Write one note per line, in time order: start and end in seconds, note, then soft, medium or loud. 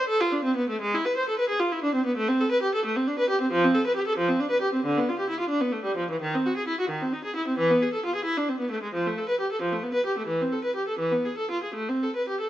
0.08 0.20 A4 medium
0.20 0.33 F4 medium
0.32 0.44 D4 medium
0.44 0.56 C4 medium
0.56 0.69 B3 medium
0.69 0.81 A3 medium
0.81 0.93 G#3 medium
0.94 1.05 E4 medium
1.05 1.16 B4 medium
1.17 1.27 C5 medium
1.29 1.39 A4 medium
1.39 1.49 B4 medium
1.49 1.60 G#4 medium
1.60 1.71 F4 medium
1.72 1.83 E4 medium
1.83 1.94 D4 medium
1.94 2.05 C4 medium
2.05 2.16 B3 medium
2.17 2.28 A3 medium
2.28 2.39 C4 medium
2.40 2.51 A4 medium
2.51 2.62 B4 medium
2.62 2.73 G4 medium
2.74 2.84 A4 medium
2.85 2.95 A3 medium
2.96 3.07 C4 medium
3.07 3.18 D4 medium
3.19 3.29 B4 medium
3.29 3.40 G4 medium
3.41 3.51 C4 medium
3.52 3.62 F3 medium
3.64 3.74 C4 medium
3.74 3.85 A4 medium
3.86 3.96 B4 medium
3.96 4.06 G4 medium
4.07 4.18 A4 medium
4.18 4.28 F3 medium
4.28 4.40 C4 medium
4.39 4.51 D4 medium
4.50 4.62 B4 medium
4.61 4.73 G4 medium
4.73 4.84 C4 medium
4.85 4.96 D3 medium
4.97 5.08 B3 medium
5.09 5.19 F4 medium
5.19 5.30 G4 medium
5.29 5.40 E4 medium
5.40 5.51 F4 medium
5.49 5.61 D4 medium
5.61 5.73 B3 medium
5.72 5.85 A3 medium
5.84 5.97 G3 medium
5.97 6.09 F3 medium
6.11 6.22 E3 medium
6.21 6.33 D#3 medium
6.34 6.45 C4 medium
6.45 6.56 F#4 medium
6.57 6.67 G#4 medium
6.68 6.79 E4 medium
6.80 6.90 F#4 medium
6.89 7.01 D#3 medium
7.02 7.12 C4 medium
7.13 7.24 D#4 medium
7.24 7.35 G#4 medium
7.36 7.46 E4 medium
7.48 7.58 C4 medium
7.58 7.69 E3 medium
7.70 7.81 B3 medium
7.82 7.92 G#4 medium
7.93 8.03 A4 soft
8.05 8.15 F4 medium
8.15 8.26 G#4 medium
8.25 8.36 E4 medium
8.37 8.48 D4 medium
8.48 8.59 C4 medium
8.59 8.70 B3 medium
8.71 8.81 A3 medium
8.83 8.93 G#3 soft
8.94 9.04 F3 medium
9.07 9.16 A3 medium
9.18 9.27 A4 medium
9.29 9.38 B4 medium
9.40 9.49 G4 soft
9.52 9.60 A4 medium
9.61 9.71 F3 medium
9.72 9.82 A3 soft
9.83 9.93 B3 soft
9.94 10.04 B4 medium
10.06 10.16 G4 medium
10.18 10.28 A3 soft
10.27 10.38 E3 medium
10.41 10.51 C4 soft
10.52 10.62 A4 soft
10.64 10.74 B4 soft
10.75 10.86 G4 soft
10.88 10.98 A4 soft
10.99 11.10 E3 medium
11.12 11.23 B3 soft
11.25 11.36 G#4 soft
11.37 11.49 A4 soft
11.51 11.62 F4 soft
11.63 11.75 G#4 soft
11.74 11.87 A3 medium
11.89 12.01 C4 soft
12.02 12.14 A4 medium
12.16 12.26 B4 soft
12.28 12.39 G4 soft
12.40 12.49 A4 soft